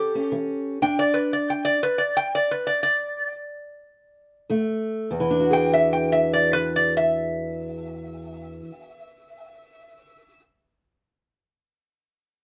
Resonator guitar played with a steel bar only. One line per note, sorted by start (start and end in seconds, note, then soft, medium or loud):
0.00 0.31 G4 loud
0.82 0.98 G5 medium
0.99 1.15 D5 medium
1.14 1.31 B4 medium
1.33 1.49 D5 medium
1.50 1.66 G5 medium
1.65 1.81 D5 medium
1.83 1.99 B4 medium
1.98 2.15 D5 medium
2.17 2.33 G5 loud
2.35 2.51 D5 medium
2.51 2.67 B4 medium
2.67 2.82 D5 medium
2.83 3.35 D5 medium
5.53 5.71 G5 medium
5.73 5.91 E5 medium
5.93 6.11 G5 medium
6.12 6.31 E5 medium
6.33 6.52 D5 medium
6.53 6.72 B4 medium
6.76 6.93 D5 medium
6.97 10.41 E5 loud